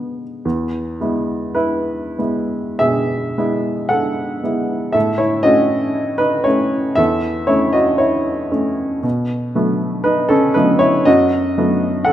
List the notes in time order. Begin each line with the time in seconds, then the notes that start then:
Already playing: G#3 B3 G#4
0.45 E2
1.00 G#3 B3 E4
1.55 E4 B4
2.18 G#3 B3 E4
2.79 B2 G#4 E5
3.38 G#3 B3 E4
3.89 A4 F#5
4.43 G#3 B3 E4
4.92 A2 A4 E5
5.18 E4 C#5
5.43 A3 C#4 F#4 D#5
6.18 D#4 B4
6.44 A3 C#4 E4 C#5
6.95 E2 A4 E5
7.47 A3 C#4 E4 C#5
7.73 F#4 D#5
7.98 E4 C#5
8.52 A3 C#4
9.03 B2
9.55 F#3 A3 B3
10.04 D#4 B4
10.29 C#4 A4
10.54 F#3 A3 B3 D#4 B4
10.79 E4 C#5
11.05 F#2 F#4 D#5
11.58 F#3 A3 B3
12.05 A4 F#5